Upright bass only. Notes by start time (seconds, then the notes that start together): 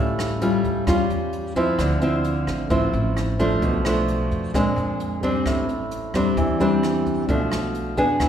Already playing: A1
0.64 E2
0.87 E2
1.10 E2
1.79 D2
2.47 A1
2.70 A1
2.93 A1
3.62 B1
4.31 F2
4.54 A#1
4.76 F2
5.46 A1
6.14 E2
6.37 E2
6.60 E2
7.29 B1
7.97 F2
8.20 E2